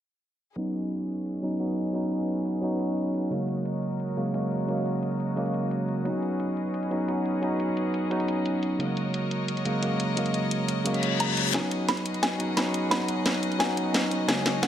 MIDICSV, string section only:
0, 0, Header, 1, 2, 480
1, 0, Start_track
1, 0, Tempo, 342857
1, 798, Time_signature, 4, 2, 24, 8
1, 20546, End_track
2, 0, Start_track
2, 0, Title_t, "String section"
2, 0, Program_c, 0, 48
2, 791, Note_on_c, 0, 68, 66
2, 793, Note_on_c, 0, 61, 74
2, 793, Note_on_c, 0, 66, 67
2, 793, Note_on_c, 0, 75, 80
2, 794, Note_on_c, 0, 71, 70
2, 4596, Note_off_c, 0, 68, 0
2, 4597, Note_off_c, 0, 61, 0
2, 4598, Note_off_c, 0, 71, 0
2, 4631, Note_on_c, 0, 73, 70
2, 4633, Note_on_c, 0, 70, 70
2, 4635, Note_on_c, 0, 56, 77
2, 8436, Note_off_c, 0, 73, 0
2, 8438, Note_off_c, 0, 56, 0
2, 8438, Note_off_c, 0, 70, 0
2, 8469, Note_on_c, 0, 68, 70
2, 8472, Note_on_c, 0, 71, 71
2, 8473, Note_on_c, 0, 61, 78
2, 12260, Note_off_c, 0, 66, 0
2, 12260, Note_off_c, 0, 75, 0
2, 12275, Note_off_c, 0, 68, 0
2, 12277, Note_off_c, 0, 61, 0
2, 12277, Note_off_c, 0, 71, 0
2, 12316, Note_on_c, 0, 56, 76
2, 12316, Note_on_c, 0, 75, 86
2, 12317, Note_on_c, 0, 66, 69
2, 12317, Note_on_c, 0, 70, 71
2, 12318, Note_on_c, 0, 73, 73
2, 16119, Note_off_c, 0, 56, 0
2, 16119, Note_off_c, 0, 66, 0
2, 16119, Note_off_c, 0, 75, 0
2, 16120, Note_off_c, 0, 70, 0
2, 16120, Note_off_c, 0, 73, 0
2, 16153, Note_on_c, 0, 71, 72
2, 16155, Note_on_c, 0, 61, 78
2, 16155, Note_on_c, 0, 66, 72
2, 16155, Note_on_c, 0, 68, 72
2, 16156, Note_on_c, 0, 75, 88
2, 19958, Note_off_c, 0, 61, 0
2, 19958, Note_off_c, 0, 71, 0
2, 19959, Note_off_c, 0, 66, 0
2, 19959, Note_off_c, 0, 68, 0
2, 19996, Note_on_c, 0, 66, 74
2, 19999, Note_on_c, 0, 73, 77
2, 20000, Note_on_c, 0, 56, 84
2, 20000, Note_on_c, 0, 70, 74
2, 20546, Note_off_c, 0, 56, 0
2, 20546, Note_off_c, 0, 66, 0
2, 20546, Note_off_c, 0, 70, 0
2, 20546, Note_off_c, 0, 73, 0
2, 20546, Note_off_c, 0, 75, 0
2, 20546, End_track
0, 0, End_of_file